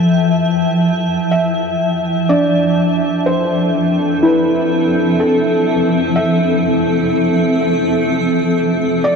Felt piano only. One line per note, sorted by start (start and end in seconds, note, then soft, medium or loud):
0.00 1.43 A4 medium
1.31 2.32 E5 medium
2.29 3.30 D5 medium
3.26 4.26 C5 medium
4.25 5.24 B4 medium
5.20 6.20 A4 medium
6.16 7.09 E5 medium
9.04 9.16 D5 medium